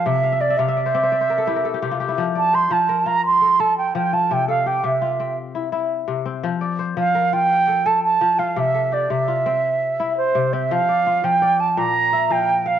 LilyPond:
<<
  \new Staff \with { instrumentName = "Flute" } { \time 12/8 \key f \major \tempo 4. = 113 e''4 d''8 e''1 r8 | r8 a''8 c'''8 a''4 bes''8 c'''4 a''8 g''8 g''8 a''8 | g''8 f''8 g''8 e''4. r2. | r4. f''4 g''4. a''8 a''4 f''8 |
e''4 d''8 e''2. c''4 e''8 | f''4. g''4 a''8 bes''4. g''4 f''8 | }
  \new Staff \with { instrumentName = "Kora" } { \time 12/8 \key f \major f'8 f''16 e''16 d''16 e''16 f''16 e''16 d''16 c''16 d''16 c''16 d''16 c''16 bes'16 a'16 g'16 bes'16 a'16 g'16 g'16 f'16 g'16 e'16~ | e'16 r16 d''8 c''4 bes'4. a'4. r8 f'8~ | f'8 a'8 g'4 f'4. e'4. r8 c'8~ | c'8 d''8 c''4 bes'4. a'4. r8 f'8~ |
f'8 a'8 g'4 f'4. r2 c'8~ | c'8 d''8 f'4 d''4. r8 e''8 f''4 f''8 | }
  \new Staff \with { instrumentName = "Kora" } { \clef bass \time 12/8 \key f \major c4 r8 c4 c'4 r8 e'4 c4 | f4 r8 f4 f'4 r8 a'4 f4 | c4 r8 c4 c'4 r8 e'4 c4 | f4 r8 f4 f'4 r8 a'4 f4 |
c4 r8 c4 c'4 r8 e'4 c4 | f4 r8 f4 r8 bes,4 r8 f4 r8 | }
>>